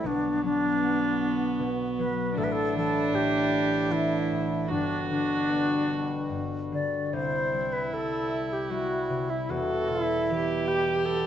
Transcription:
Already playing: A1 A2 E3 G3
0.03 B1 B2 D3 B3 D4 F#4
0.43 F#3 D4
0.82 B3
1.59 B2
1.98 F#3 B4
2.35 A1 A2 A3 D4 E4 A4
2.44 B4
2.52 A4
2.76 E3 A4
3.13 A2 G4
3.90 E3 E4
4.31 A2
4.68 G1 G2 B2 G3 D4 F#4
5.09 D3 D4
5.49 B3
6.29 G2
6.72 D3 D5
7.06 D5
7.11 C2 C3 E4 C5
7.54 G3
7.73 B4
7.92 C3 A4
8.53 G4
8.70 G3 F#4
9.10 C3
9.30 E4
9.49 E1 E2 B2 F#4 A4
9.89 B2 E4
10.30 E3 G4
10.68 G4
11.05 B3 A4

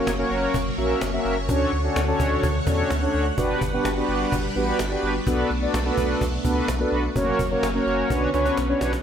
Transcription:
Already playing: F#3 A#3 C#4 F#4 A#4 C#5
0.07 F#1, cajon slap
0.19 A#3 C#4 F#4 A#4 C#5
0.31 F#1, cajon slap
0.54 F#1, cajon bass
0.78 A#1 A#3 C#4 F#4 A#4 E5, cajon slap
1.01 F#1, cajon slap
1.13 A#3 C#4 F#4 A#4 E5
1.25 F#1, cajon slap
1.49 D2 D3 A3 C#4 D4 F#4 A4 C#5 F#5, cajon bass
1.72 D2, cajon slap
1.84 C#4 D4 F#4 A4 C#5
1.96 D2, cajon slap
2.08 C#4 D4 F#4 A4 C#5
2.20 D2, cajon bass
2.43 D2, cajon bass
2.67 E2 C#4 D4 F#4 A4 C#5, cajon bass
2.90 D2, cajon slap
3.02 C#4 D4 F#4 A4 C#5
3.14 D2
3.38 G1 G3 B3 D4 F#4 G4 B4, cajon bass
3.61 G1, cajon bass
3.73 B3 D4 F#4 G4 B4
3.85 G1, cajon slap
3.97 B3 D4 F#4 G4 B4
4.09 G1, cajon slap
4.32 G1, cajon bass
4.56 A1 B3 D4 F#4 G4 B4, cajon slap
4.79 G1, cajon slap
4.91 B3 D4 F#4 G4 B4
5.03 G1
5.27 B1 A3 B3 D4 F#4 A4 B4, cajon bass
5.50 B1, cajon slap
5.62 B3 D4 F#4 A4 D5
5.74 B1, cajon slap
5.86 B3 D4 F#4 A4 B4
5.97 B1, cajon bass
6.21 B1, cajon bass
6.45 C#2 B3 D4 F#4 A4 B4, cajon bass
6.68 B1, cajon slap
6.80 B3 D4 F#4 A4 B4
6.92 B1
7.16 F#1 F#3 A#3 C#4 F#4 A#4 C#5, cajon bass
7.39 F#1, cajon bass
7.51 A#3 C#4 F#4 A#4 C#5
7.63 F#1, cajon slap
7.75 A#3 C#4 F#4 A#4 C#5
7.87 F#1, cajon slap
8.10 B1 D3 B3 C#4 D4 F#4 B4 C#5, cajon bass, cajon slap
8.34 C#2 C#4 D4 F#4 B4 C#5, cajon slap
8.46 cajon slap
8.57 B1, cajon slap
8.69 C#4 D4 F#4 B4 C#5
8.81 B1, cajon slap
8.93 cajon slap

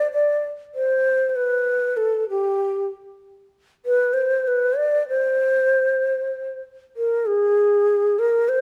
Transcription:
Already playing: D5
0.12 D5
0.75 C5
1.29 C5
1.36 B4
1.97 A4
2.30 G4
3.86 B4
4.14 C5
4.48 B4
4.77 D5
5.08 C5
6.97 A#4
7.26 G#4
8.19 A#4
8.49 C5

